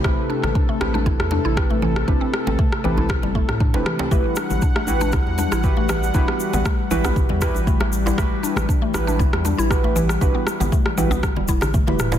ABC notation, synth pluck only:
X:1
M:4/4
L:1/16
Q:1/4=118
K:Em
V:1 name="Synth pluck"
A, z D z D A, z D E z D E z A, E, z | D C z C A, z E, E z G, A, z D D E, C | A, z D z D A, z D E z D E z A, E, z | D B, z B, A, z E, B, z G, E z A, A, z E |
A, z D z D A, z D E z D E z A, E, z | D B, z B, A, z E, B, z G, E z A, A, z E |]